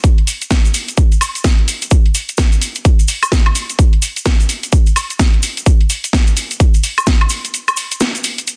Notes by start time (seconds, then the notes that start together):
0.04 kick, closed hi-hat, cabasa
0.18 closed hi-hat
0.27 open hi-hat, cabasa
0.41 closed hi-hat, cabasa
0.51 kick, snare, closed hi-hat, cabasa
0.65 closed hi-hat, cabasa
0.74 open hi-hat, cabasa
0.88 closed hi-hat, cabasa
0.97 kick, closed hi-hat, cabasa
1.12 closed hi-hat, cabasa
1.21 open hi-hat, cabasa, high woodblock
1.35 closed hi-hat, cabasa
1.44 kick, snare, closed hi-hat, cabasa
1.59 closed hi-hat
1.68 open hi-hat, cabasa
1.82 closed hi-hat, cabasa
1.91 kick, closed hi-hat, cabasa
2.06 closed hi-hat
2.15 open hi-hat, cabasa
2.29 closed hi-hat, cabasa
2.37 kick, snare, closed hi-hat, cabasa
2.52 closed hi-hat, cabasa
2.62 open hi-hat, cabasa
2.75 closed hi-hat, cabasa
2.85 kick, closed hi-hat, cabasa
2.99 closed hi-hat, cabasa
3.08 open hi-hat, cabasa
3.23 closed hi-hat, cabasa, high woodblock
3.32 kick, snare, closed hi-hat, cabasa
3.46 closed hi-hat, high woodblock
3.55 open hi-hat, cabasa
3.69 closed hi-hat, cabasa
3.79 kick, closed hi-hat, cabasa
3.93 closed hi-hat
4.02 open hi-hat, cabasa
4.16 closed hi-hat, cabasa
4.25 kick, snare, closed hi-hat, cabasa
4.40 closed hi-hat, cabasa
4.49 open hi-hat, cabasa
4.63 closed hi-hat, cabasa
4.72 kick, closed hi-hat, cabasa
4.86 closed hi-hat, cabasa
4.96 open hi-hat, cabasa, high woodblock
5.10 closed hi-hat, cabasa
5.19 kick, snare, closed hi-hat, cabasa
5.34 closed hi-hat
5.43 open hi-hat, cabasa
5.57 closed hi-hat, cabasa
5.66 kick, closed hi-hat, cabasa
5.81 closed hi-hat
5.90 open hi-hat, cabasa
6.04 closed hi-hat, cabasa
6.13 kick, snare, closed hi-hat, cabasa
6.27 closed hi-hat, cabasa
6.37 open hi-hat, cabasa
6.51 closed hi-hat, cabasa
6.60 kick, closed hi-hat, cabasa
6.74 closed hi-hat, cabasa
6.83 open hi-hat, cabasa
6.98 closed hi-hat, cabasa, high woodblock
7.07 kick, snare, closed hi-hat, cabasa
7.21 closed hi-hat, high woodblock
7.29 open hi-hat, cabasa
7.45 closed hi-hat, cabasa
7.54 closed hi-hat, cabasa
7.68 closed hi-hat, cabasa, high woodblock
7.77 open hi-hat, cabasa
7.91 closed hi-hat, cabasa
8.00 snare, closed hi-hat, cabasa
8.15 closed hi-hat, cabasa
8.24 open hi-hat, cabasa
8.38 closed hi-hat, cabasa
8.47 closed hi-hat, cabasa